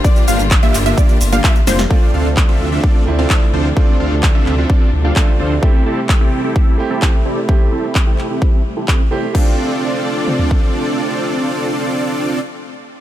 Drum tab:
CC |----------------|----------------|----------------|----------------|
HH |xxoxxxoxxxoxxxox|----------------|----------------|----------------|
SH |xxxxxxxxxxxxxxxx|----------------|----------------|----------------|
CP |----x-x-----x---|----x-------x---|----x-x-----x---|----x-------x---|
SD |--------------oo|----------------|----------------|----------------|
T2 |----------------|----------------|----------------|----------------|
FT |----------------|----------------|----------------|----------------|
BD |o---o---o---o---|o---o---o---o---|o---o---o---o---|o---o---o---o---|

CC |----------------|x---------------|----------------|
HH |----------------|----------------|----------------|
SH |----------------|----------------|----------------|
CP |----x-x-----x---|----------------|----------------|
SD |----------------|----------------|----------------|
T2 |----------------|--------o-------|----------------|
FT |----------------|---------o------|----------------|
BD |o---o---o---o---|o---------o-----|----------------|